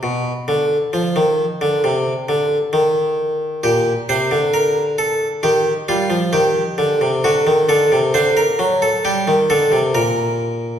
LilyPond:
<<
  \new Staff \with { instrumentName = "Harpsichord" } { \time 4/4 \key g \phrygian \tempo 4 = 66 b,8 d8 f16 ees8 d16 c8 d8 ees4 | g'8 c''8 bes'8 a'8 g'8 f'8 g'4 | fis'8 a'8 c''16 bes'8 a'16 g'8 a'8 bes'4 | }
  \new Staff \with { instrumentName = "Harpsichord" } { \clef bass \time 4/4 \key g \phrygian r1 | bes,8 c16 d4~ d16 ees8 g16 f16 ees8 d16 c16 | d16 ees16 d16 c16 d8 fis8 g16 ees16 d16 c16 bes,4 | }
>>